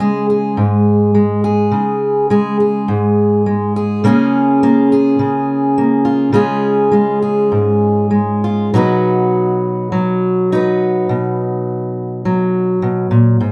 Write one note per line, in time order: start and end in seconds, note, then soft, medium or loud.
0.00 0.59 C#3 medium
0.00 1.14 G#3 medium
0.00 0.29 G#4 medium
0.30 1.44 G#4 soft
0.57 1.73 G#2 medium
1.15 2.30 G#3 medium
1.44 2.31 G#4 medium
1.71 2.88 C#3 medium
2.30 3.46 G#3 medium
2.30 2.60 G#4 medium
2.60 3.76 G#4 soft
2.88 4.03 G#2 medium
3.46 4.04 G#3 medium
3.76 4.07 G#4 medium
4.04 5.19 C#3 medium
4.04 4.62 A#3 medium
4.04 6.32 C#4 medium
4.04 4.63 F4 medium
4.04 4.92 G#4 medium
4.63 5.77 A#3 medium
4.63 6.04 F4 medium
4.92 6.34 G#4 medium
5.19 6.31 C#3 medium
5.78 6.32 A#3 medium
6.05 6.31 F4 medium
6.33 7.51 C#3 medium
6.33 6.90 G#3 medium
6.33 8.71 C#4 medium
6.33 6.92 F4 medium
6.33 7.21 G#4 medium
6.92 8.09 G#3 medium
6.92 8.43 F4 medium
7.22 8.74 G#4 medium
7.52 8.73 G#2 medium
8.11 8.69 G#3 soft
8.44 8.71 F4 soft
8.74 11.06 B2 medium
8.74 9.92 F#3 medium
8.74 10.52 D#4 medium
8.74 10.52 F#4 medium
8.74 10.54 B4 medium
9.92 12.24 F#3 medium
10.52 13.52 D#4 medium
10.52 11.07 F#4 medium
10.52 13.14 B4 medium
11.09 12.81 B2 medium
12.25 13.40 F#3 medium
12.82 13.10 B2 medium
13.11 13.39 A#2 medium
13.41 13.52 G#2 medium